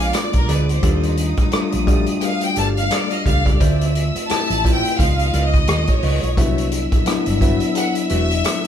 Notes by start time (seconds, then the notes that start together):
Already playing: A#1 G#3 B3 D4 F4 D5 D6
0.00 F5, closed hi-hat
0.13 D5, cross-stick, closed hi-hat
0.33 B1 A#4, muted clean electric guitar stroke, kick, closed hi-hat
0.48 D2 G#4 B4 D5, closed hi-hat
0.68 C5, muted clean electric guitar stroke, closed hi-hat
0.82 D#2 G3 A3 D4 D#4 F4 G4 A4 D5 D#6, kick, closed hi-hat
1.03 closed hi-hat
1.17 closed hi-hat
1.37 muted clean electric guitar stroke, muted fingered electric bass stroke, kick, closed hi-hat
1.52 G3 A3 D4 F4, muted fingered electric bass stroke, cross-stick, closed hi-hat
1.72 A#1, muted clean electric guitar stroke, closed hi-hat
1.86 G3 A3 D4 F#4 G4 A4 D5, kick, closed hi-hat
1.94 G4
2.06 muted clean electric guitar stroke, closed hi-hat
2.19 G5, muted clean electric guitar stroke, closed hi-hat
2.24 F5
2.41 G5, muted clean electric guitar stroke, closed hi-hat
2.56 G1 G4 A4 D5 F5 A5 F6, closed hi-hat
2.77 F5, muted clean electric guitar stroke, closed hi-hat
2.91 D5, muted clean electric guitar stroke, cross-stick, closed hi-hat
3.11 D#5, muted clean electric guitar stroke, closed hi-hat
3.26 C#2 G4 A4 D5 F5, kick, closed hi-hat
3.46 G4 A4 D5, kick, closed hi-hat
3.59 D2 A3 C4 F4 C5 D5 E5 E6, kick, closed hi-hat
3.81 closed hi-hat
3.95 closed hi-hat
4.15 muted clean electric guitar stroke, closed hi-hat
4.29 A3 C4 E4 G4 A5, muted fingered electric bass stroke, cross-stick, closed hi-hat
4.50 A1, muted clean electric guitar stroke, closed hi-hat
4.64 A3 C4 E4 F4 C5 D5, kick, closed hi-hat
4.76 G5
4.84 muted clean electric guitar stroke, closed hi-hat
4.98 C#2 G#3 B3 D#4 F4 D#5 F5 D#6, muted clean electric guitar stroke, kick, closed hi-hat
5.19 muted clean electric guitar stroke, closed hi-hat
5.33 C#2 F4 B4 D#5, closed hi-hat
5.45 D#5
5.54 muted clean electric guitar stroke, kick, cross-stick, closed hi-hat
5.67 D#2, cross-stick, closed hi-hat
5.87 muted clean electric guitar stroke, kick, closed hi-hat
5.91 C#5
6.03 C#2 F4 B4 D#5, open hi-hat
6.23 B1, muted clean electric guitar stroke, closed hi-hat
6.37 C2 F#3 B3 D4 E4 F#4 B4 E5 E6, kick, closed hi-hat
6.58 closed hi-hat
6.72 closed hi-hat
6.92 muted clean electric guitar stroke, muted fingered electric bass stroke, kick, closed hi-hat
7.05 F#3 B3 D4 E4, muted fingered electric bass stroke, cross-stick, closed hi-hat
7.26 G1, muted clean electric guitar stroke, closed hi-hat
7.41 F#3 B3 D4 E4 F#4 B4 E5, kick, closed hi-hat
7.60 muted clean electric guitar stroke, closed hi-hat
7.75 F#5, muted clean electric guitar stroke, closed hi-hat
7.95 muted clean electric guitar stroke, closed hi-hat
8.10 E1 F#4 B4 E5, closed hi-hat
8.30 muted clean electric guitar stroke, closed hi-hat
8.44 muted clean electric guitar stroke, cross-stick, closed hi-hat